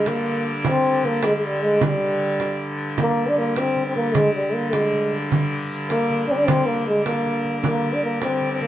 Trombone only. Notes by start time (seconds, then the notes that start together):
0.08 A#3
0.66 C4
1.05 A#3
1.24 G#3
1.37 G#3
1.44 G3
1.63 G#3
1.84 G3
3.01 A#3
3.28 D4
3.38 A#3
3.58 C4
3.87 C4
3.96 A#3
4.15 G#3
4.33 G3
4.54 A#3
4.73 G#3
5.90 A#3
6.27 D4
6.31 C4
6.37 D4
6.46 C4
6.66 A#3
6.87 G#3
7.06 A#3
7.65 A#3
7.94 D4
8.03 A#3
8.23 C4
8.52 C4
8.62 A#3